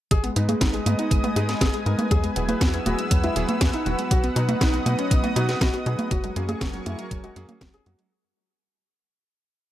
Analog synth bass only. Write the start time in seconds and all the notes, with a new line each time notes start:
0.11 G#1
0.36 G#2
0.61 G#1
0.86 G#2
1.11 G#1
1.36 G#2
1.61 G#1
1.86 G#2
2.11 E2
2.36 E1
2.61 E2
2.86 E1
3.11 E2
3.36 E1
3.61 E2
3.86 E1
4.11 B1
4.36 B2
4.61 B1
4.86 B2
5.11 B1
5.36 B2
5.61 B1
5.86 B2
6.11 F#1
6.36 F#2
6.61 F#1
6.86 F#2
7.11 F#1
7.36 F#2
7.61 F#1
7.86 F#2